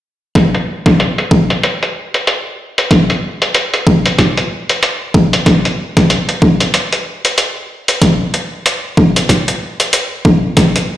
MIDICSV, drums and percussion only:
0, 0, Header, 1, 2, 480
1, 0, Start_track
1, 0, Tempo, 638298
1, 268, Time_signature, 4, 2, 24, 8
1, 8250, End_track
2, 0, Start_track
2, 0, Title_t, "Drums"
2, 265, Note_on_c, 9, 36, 111
2, 268, Note_on_c, 9, 42, 65
2, 341, Note_off_c, 9, 36, 0
2, 343, Note_off_c, 9, 42, 0
2, 410, Note_on_c, 9, 42, 36
2, 485, Note_off_c, 9, 42, 0
2, 646, Note_on_c, 9, 36, 104
2, 649, Note_on_c, 9, 42, 51
2, 721, Note_off_c, 9, 36, 0
2, 724, Note_off_c, 9, 42, 0
2, 751, Note_on_c, 9, 42, 60
2, 826, Note_off_c, 9, 42, 0
2, 890, Note_on_c, 9, 42, 36
2, 965, Note_off_c, 9, 42, 0
2, 986, Note_on_c, 9, 36, 100
2, 1061, Note_off_c, 9, 36, 0
2, 1130, Note_on_c, 9, 42, 53
2, 1205, Note_off_c, 9, 42, 0
2, 1229, Note_on_c, 9, 42, 64
2, 1304, Note_off_c, 9, 42, 0
2, 1373, Note_on_c, 9, 42, 37
2, 1448, Note_off_c, 9, 42, 0
2, 1612, Note_on_c, 9, 42, 50
2, 1687, Note_off_c, 9, 42, 0
2, 1709, Note_on_c, 9, 42, 66
2, 1784, Note_off_c, 9, 42, 0
2, 2091, Note_on_c, 9, 42, 56
2, 2166, Note_off_c, 9, 42, 0
2, 2187, Note_on_c, 9, 36, 117
2, 2189, Note_on_c, 9, 42, 71
2, 2262, Note_off_c, 9, 36, 0
2, 2264, Note_off_c, 9, 42, 0
2, 2330, Note_on_c, 9, 42, 36
2, 2405, Note_off_c, 9, 42, 0
2, 2570, Note_on_c, 9, 42, 55
2, 2645, Note_off_c, 9, 42, 0
2, 2666, Note_on_c, 9, 42, 65
2, 2741, Note_off_c, 9, 42, 0
2, 2809, Note_on_c, 9, 42, 38
2, 2884, Note_off_c, 9, 42, 0
2, 2908, Note_on_c, 9, 36, 102
2, 2983, Note_off_c, 9, 36, 0
2, 3050, Note_on_c, 9, 42, 52
2, 3125, Note_off_c, 9, 42, 0
2, 3147, Note_on_c, 9, 36, 60
2, 3149, Note_on_c, 9, 42, 65
2, 3223, Note_off_c, 9, 36, 0
2, 3224, Note_off_c, 9, 42, 0
2, 3289, Note_on_c, 9, 42, 37
2, 3365, Note_off_c, 9, 42, 0
2, 3530, Note_on_c, 9, 42, 54
2, 3605, Note_off_c, 9, 42, 0
2, 3629, Note_on_c, 9, 42, 64
2, 3704, Note_off_c, 9, 42, 0
2, 3868, Note_on_c, 9, 36, 102
2, 3943, Note_off_c, 9, 36, 0
2, 4010, Note_on_c, 9, 42, 54
2, 4085, Note_off_c, 9, 42, 0
2, 4107, Note_on_c, 9, 36, 116
2, 4109, Note_on_c, 9, 42, 64
2, 4182, Note_off_c, 9, 36, 0
2, 4185, Note_off_c, 9, 42, 0
2, 4250, Note_on_c, 9, 42, 35
2, 4326, Note_off_c, 9, 42, 0
2, 4488, Note_on_c, 9, 36, 114
2, 4488, Note_on_c, 9, 42, 52
2, 4563, Note_off_c, 9, 36, 0
2, 4563, Note_off_c, 9, 42, 0
2, 4587, Note_on_c, 9, 42, 63
2, 4662, Note_off_c, 9, 42, 0
2, 4728, Note_on_c, 9, 42, 36
2, 4803, Note_off_c, 9, 42, 0
2, 4827, Note_on_c, 9, 36, 102
2, 4902, Note_off_c, 9, 36, 0
2, 4966, Note_on_c, 9, 42, 52
2, 5041, Note_off_c, 9, 42, 0
2, 5067, Note_on_c, 9, 42, 66
2, 5142, Note_off_c, 9, 42, 0
2, 5207, Note_on_c, 9, 42, 37
2, 5283, Note_off_c, 9, 42, 0
2, 5450, Note_on_c, 9, 42, 54
2, 5525, Note_off_c, 9, 42, 0
2, 5548, Note_on_c, 9, 42, 65
2, 5623, Note_off_c, 9, 42, 0
2, 5928, Note_on_c, 9, 42, 53
2, 6003, Note_off_c, 9, 42, 0
2, 6028, Note_on_c, 9, 36, 123
2, 6028, Note_on_c, 9, 42, 65
2, 6103, Note_off_c, 9, 36, 0
2, 6103, Note_off_c, 9, 42, 0
2, 6270, Note_on_c, 9, 42, 34
2, 6345, Note_off_c, 9, 42, 0
2, 6510, Note_on_c, 9, 42, 60
2, 6585, Note_off_c, 9, 42, 0
2, 6748, Note_on_c, 9, 36, 102
2, 6823, Note_off_c, 9, 36, 0
2, 6890, Note_on_c, 9, 42, 50
2, 6966, Note_off_c, 9, 42, 0
2, 6988, Note_on_c, 9, 36, 61
2, 6990, Note_on_c, 9, 42, 61
2, 7063, Note_off_c, 9, 36, 0
2, 7065, Note_off_c, 9, 42, 0
2, 7129, Note_on_c, 9, 42, 34
2, 7204, Note_off_c, 9, 42, 0
2, 7368, Note_on_c, 9, 42, 50
2, 7444, Note_off_c, 9, 42, 0
2, 7467, Note_on_c, 9, 42, 66
2, 7542, Note_off_c, 9, 42, 0
2, 7708, Note_on_c, 9, 36, 104
2, 7783, Note_off_c, 9, 36, 0
2, 7947, Note_on_c, 9, 42, 64
2, 7948, Note_on_c, 9, 36, 117
2, 8022, Note_off_c, 9, 42, 0
2, 8023, Note_off_c, 9, 36, 0
2, 8089, Note_on_c, 9, 42, 33
2, 8164, Note_off_c, 9, 42, 0
2, 8250, End_track
0, 0, End_of_file